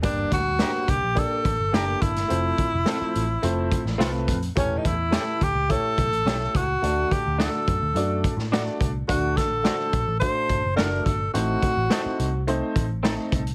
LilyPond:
<<
  \new Staff \with { instrumentName = "Tenor saxophone" } { \time 4/4 \key g \minor \tempo 4 = 106 d'8 fis'4 g'8 a'4 g'8 e'8~ | e'2.~ e'8 r8 | cis'16. ees'32 e'4 g'8 a'4. fis'8~ | fis'8 g'8 a'2 r4 |
fis'8 a'4. c''4 bes'8 a'8 | fis'2 r2 | }
  \new Staff \with { instrumentName = "Clean electric guitar" } { \time 4/4 \key g \minor r4 <d' g' bes'>8 r4. <d' g' bes'>8 r8 | r4 <c' f' a'>8 r4. <c' f' a'>8 r8 | r4 <cis' g' a'>8 r4. <cis' g' a'>8 r8 | r4 <d' fis' a'>8 r4. <d' fis' a'>8 r8 |
r4 <d' fis' a'>8 r4. <d' fis' a'>8 r8 | r4 <c' ees' a'>8 r4. <c' ees' a'>8 r8 | }
  \new Staff \with { instrumentName = "Upright piano" } { \time 4/4 \key g \minor <bes d' g' d''>8 r8 <bes d' g' c''>8 r8 <bes d' g' d''>8 r8 <bes d' g' a'>8 r8 | <f a c' c''>8 r8 <f a c' c''>8 r8 <f a c' c''>8 r8 <a c' f' b'>8 r8 | <a e' g' cis''>8 r8 <a e' g' a'>8 r8 <a e' g' cis''>8 r8 <a e' g' cis''>8 r8 | <a d' fis' d''>8 r8 <a d' fis' d''>8 r8 <a d' fis' d''>8 r8 <a d' fis' d''>8 r8 |
<a d' fis' d''>8 r8 <a d' fis' c''>8 r8 <a d' fis' c''>8 r8 <a d' fis' d''>8 r8 | <a c' ees' c''>8 r8 <a c' ees' c''>8 r8 <a c' ees' c''>8 r8 <a c' ees' a'>8 r8 | }
  \new Staff \with { instrumentName = "Upright piano" } { \clef bass \time 4/4 \key g \minor g,4. r2 r8 | r1 | e4. r2 r8 | d4. r2 r8 |
d4. r2 r8 | a,4. r2 r8 | }
  \new Staff \with { instrumentName = "Picked electric bass" } { \clef bass \time 4/4 \key g \minor g,,8 d,8. r16 c,16 bes,,8 r16 a,,16 g,,16 fis,,8 g,,8 | f,,8 r16 f,,16 r8 a,,8 f,,8. a,,16 c,8 f,8 | e,,8 e,8. r16 d,16 cis,8 r16 b,,16 a,,16 b,,8 cis,8 | d,8 r16 d,8 r16 fis,16 d,16 fis,8. a,8. c,8 |
d,8 a,,8. r16 bes,,16 a,,8 r16 g,,16 fis,,16 fis,,8 g,,8 | a,,8 r16 a,,16 r8 c,4 a,,4 c,8 | }
  \new DrumStaff \with { instrumentName = "Drums" } \drummode { \time 4/4 <hh bd>8 <hh bd sn>8 <hh sn>8 <hh bd>8 <hh bd>8 <hh bd>8 <hh sn>8 <hh bd>16 <hh sn>16 | hh8 <hh bd>8 <hh sn>8 hh8 hh8 <hh bd>16 sn16 <hh sn>8 <hh bd>16 hh16 | <hh bd>8 <hh bd>8 <hh sn>8 <hh bd>8 <hh bd>8 <hh bd>16 hh16 <hh sn>8 <hh bd>8 | hh8 <hh bd>8 <hh sn>8 <hh bd>8 hh8 <hh bd>16 sn16 <hh sn>8 <hh bd>8 |
<hh bd>8 <hh bd sn>8 <hh sn>8 <hh bd>8 <hh bd>8 <hh bd>8 <hh sn>8 <hh bd>8 | hh8 <hh bd>8 <hh sn>8 hh8 hh8 <hh bd>8 <hh sn>8 <hh bd>16 hh16 | }
>>